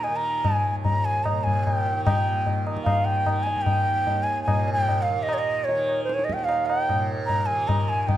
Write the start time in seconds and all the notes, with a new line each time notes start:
Already playing: D#2 A#2 D#3
0.03 G#5, tabla na
0.08 D#3
0.16 A#5
0.45 tabla na, tabla ge
0.54 G#5
0.70 D#2
0.84 A#5, tabla tin, tabla ge
1.05 G#5
1.24 A#5, tabla na, tabla ge
1.31 A#2
1.44 G#5, tabla ge
1.64 G#5, tabla na, tabla ge
1.76 G5
1.86 tabla te
1.93 D#3
2.05 A#2 G5, tabla na, tabla ge
2.46 tabla tin, tabla ge
2.66 D#3, tabla na
2.77 tabla ke
2.84 F5, tabla na, tabla ge
3.05 G5, tabla ge
3.26 D#3, tabla na, tabla ge
3.43 G#5, tabla te
3.56 tabla ge
3.62 G5
3.66 tabla na, tabla ge
3.88 D#2
4.07 tabla tin, tabla ge
4.23 G#5
4.43 G#5
4.48 A#2, tabla na, tabla ge
4.68 tabla te
4.73 G5
4.78 tabla ge
4.89 tabla na, tabla ge
5.02 F5
5.10 D#3
5.23 D#5
5.29 tabla na
5.34 C#5
5.39 D#5
5.64 C#5
5.69 D#3, tabla tin
5.89 tabla na
6.04 C5
6.09 tabla te
6.14 C#5
6.19 tabla te
6.24 D#5
6.30 D#2 G5, tabla ke
6.39 tabla te
6.44 F5
6.49 tabla na
6.66 F#5, tabla na
6.81 G5
6.89 A#2, tabla na, tabla ge
7.26 A#5, tabla tin, tabla ge
7.46 G#5
7.51 D#3
7.68 A#5, tabla na, tabla ge
7.88 G#5, tabla ge
8.03 G#5
8.07 D#3 G5, tabla na, tabla ge